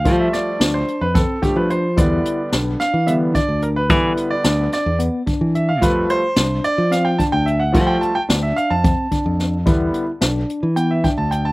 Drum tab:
HH |xxxxxxx|xxxxxxx|xxxxxxx|xxxxxxx|
SD |-oo-o--|--oo---|--oo---|--o-o--|
BD |o---oo-|o----o-|o----o-|o----o-|

HH |xxxxxxx|xxxxxxx|
SD |--o---o|--o----|
BD |o---oo-|o----o-|